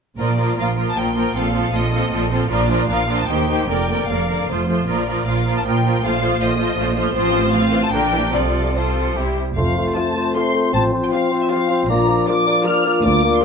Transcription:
0.17 double bass section A#1, cello section A#2, viola section F3 A#3, violin section F4 A#4 D5
0.37 viola section F3 A#3, violin section F4 A#4
0.56 double bass section A#1, cello section A#2, viola section F3 A#3, violin section F4 A#4 F5
0.76 viola section F3 A#3, violin section F4 A#4
0.89 violin section A5
0.95 double bass section A#1, cello section A#2, viola section F3 A#3, violin section F4 A#4 G5
1.14 viola section F3 A#3, violin section F4 A#4
1.35 double bass section A#1, cello section A#2, viola section F3 C4, violin section F4 A4 F5
1.54 viola section F3 C4, violin section F4 A4
1.72 double bass section A#1, cello section A#2, viola section F3 C4, violin section F4 A4 D#5
1.92 viola section F3 C4, violin section F4 A4
2.11 double bass section A#1, cello section A#2, viola section F3 C4, violin section F4 A4
2.31 viola section F3 C4, violin section F4 A4
2.50 double bass section A#1, cello section A#2, viola section F3 D4, violin section F4 A#4 D5
2.69 viola section F3 D4, violin section F4 A#4
2.89 double bass section A#1, cello section A#2, viola section F3 D4, violin section F4 A#4 F5
3.07 viola section F3 D4, violin section F4 A#4
3.19 violin section A5
3.28 double bass section D#2, cello section D#2, viola section D#3 D#4, violin section G4 C5 G5
3.48 viola section D#3 D#4, violin section G4 C5
3.68 double bass section F1, cello section F2, viola section D3 A#3, violin section A#4 D5 G5
3.87 viola section D3 A#3, violin section A#4 D5
4.07 double bass section F1, cello section F2, viola section D3 A#3, violin section A#4 D5 F5
4.28 viola section D3 A#3, violin section A#4 D5
4.47 double bass section F1, cello section F2, viola section F3 A3, violin section F4 C5
4.67 viola section F3 A3, violin section F4 C5
4.87 double bass section A#1, cello section A#2, viola section F3 A#3, violin section F4 A#4 D5
5.07 viola section F3 A#3, violin section F4 A#4
5.26 double bass section A#1, cello section A#2, viola section F3 A#3, violin section F4 A#4 F5
5.45 viola section F3 A#3, violin section F4 A#4
5.57 violin section A5
5.64 double bass section A#1, cello section A#2, viola section F3 A#3, violin section F4 A#4 G5
5.83 viola section F3 A#3, violin section F4 A#4
6.02 double bass section A#1, cello section A#2, viola section F3 A3, violin section F4 C5 F5
6.21 viola section F3 A3, violin section F4 C5
6.40 double bass section A#1, cello section A#2, viola section F3 A3, violin section F4 C5 D#5
6.58 viola section F3 A3, violin section F4 C5
6.76 double bass section A#1, cello section A#2, viola section F3 A3, violin section F4 C5
6.96 viola section F3 A3, violin section F4 C5
7.14 double bass section A1, cello section A2, viola section F3 C4, violin section F4 C5
7.52 viola section F3 C4, violin section F4 C5 F5
7.72 viola section E3
7.83 violin section A5
7.92 double bass section A#1, cello section A#2, viola section D3 D4, violin section G4 A#4 G5
8.12 viola section E3
8.33 double bass section C2, cello section C3, viola section F3 C4, violin section F4 A4 D5
8.75 viola section F3 C4, violin section F4 A4 C5
9.15 double bass section C2, cello section C3, viola section G3 C4, violin section E4 G4
9.56 double bass section F1, cello section F2, timpani F2, bassoon A3, french horn section A3 C4, clarinet F4, cor anglais C5, violin section F5
9.77 bassoon A3, clarinet F4, cor anglais C5
9.94 viola section F3 F4, bassoon A3, violin section F4 A4 A5, clarinet F4, cor anglais C5
10.15 bassoon A3, clarinet F4, cor anglais C5
10.35 viola section F3 F4, bassoon A3, violin section F4 A4 C6, clarinet F4, cor anglais C5
10.54 bassoon A3, clarinet F4, cor anglais C5
10.73 double bass section A1, cello section A2, french horn section F3, bassoon C4, clarinet F4, cor anglais C5, violin section A5
10.92 bassoon C4, clarinet F4, cor anglais C5
11.03 violin section G5
11.12 viola section F3 F4, bassoon C4, violin section F4 C5 F5, clarinet F4, cor anglais C5
11.31 bassoon C4, clarinet F4, cor anglais C5
11.43 violin section E5
11.50 viola section F3 F4, bassoon C4, clarinet F4, violin section F4 C5 F5, cor anglais C5
11.70 bassoon C4, clarinet F4, cor anglais C5
11.89 double bass section A#1, cello section A#2, bassoon A#3, french horn section D4, clarinet F4, cor anglais D5, violin section A#5
12.08 bassoon A#3, clarinet F4, cor anglais D5
12.27 viola section F3 F4, bassoon A#3, clarinet F4, violin section A#4 D5 D6, cor anglais D5
12.47 bassoon A#3, clarinet F4, cor anglais D5
12.65 viola section F3 F4, bassoon A#3, clarinet F4, violin section A#4 D5 F6, cor anglais D5
12.86 bassoon A#3, clarinet F4, cor anglais D5
13.04 double bass section D2, cello section D2, french horn section A#3, bassoon A#3, clarinet F4, cor anglais D5, violin section D6
13.24 bassoon A#3, clarinet F4, cor anglais D5
13.36 violin section C6
13.42 violin section A#4

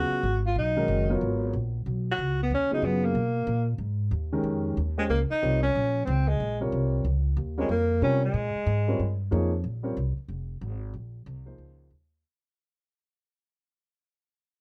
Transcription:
Already playing: upright piano C#3 F#3 B3 F4 G#4, tenor saxophone F#4
0.11 muted upright bass stroke
0.23 upright bass G#1
0.46 tenor saxophone F4
0.55 upright bass B1, tenor saxophone D#4
0.76 upright piano D#3 G#3 C#4 F#4 A#4
0.88 upright bass F#1
1.09 upright piano F#3 B3 F4 A#4 C#5
1.21 upright bass G#1
1.53 upright bass A#1
1.86 upright bass B1
2.12 tenor saxophone F#4
2.18 upright bass C#2
2.43 tenor saxophone B3
2.50 upright bass D#2
2.54 tenor saxophone C#4
2.71 upright piano C#3 F#3 B3 F4 G#4, tenor saxophone D#4, muted upright bass stroke
2.82 upright bass F#2, tenor saxophone B3
3.05 tenor saxophone A#3
3.15 upright bass B2
3.47 upright bass A#2
3.78 upright bass G#2
4.11 upright bass D#2
4.32 upright piano D#3 G#3 C#4 G4 A#4
4.43 upright bass F2
4.77 upright bass D#2
4.98 upright piano G#3 C#4 G4 C5 D#5, tenor saxophone G#3
5.09 upright bass C#2, tenor saxophone A#3
5.31 tenor saxophone D#4
5.42 upright bass C2, upright piano G3 C4 F4 A#4 C#5
5.63 tenor saxophone C#4
5.75 upright bass A#1
6.05 upright bass C#2, tenor saxophone C4
6.28 tenor saxophone G#3
6.40 upright bass A#1
6.60 upright piano C3 G3 F4 A#4 C#5
6.72 upright bass C2
7.05 upright bass C#2
7.37 upright bass D#2
7.58 upright piano G3 C4 F4 A#4 C#5, tenor saxophone G#3
7.69 upright bass F2, tenor saxophone A#3
8.02 upright bass C3, upright piano G3 C4 F4 A#4 C#5, tenor saxophone C#4
8.25 tenor saxophone G#3
8.34 upright bass A#2
8.55 muted upright bass stroke
8.66 upright bass G#2
8.88 upright piano G3 C4 F4 A#4 C#5
8.99 upright bass G2
9.31 upright bass F2, upright piano F3 A#3 D#4 G#4 C#5
9.64 upright bass A#1
9.83 upright piano G3 C4 F4 A#4 C#5
9.97 upright bass C2
10.18 muted upright bass stroke
10.28 upright bass F1
10.61 upright bass G#1
10.94 upright bass A#1
11.26 upright bass C2
11.46 upright piano F3 A#3 D#4 G#4 C5
11.58 upright bass C#2
11.90 upright bass D#2

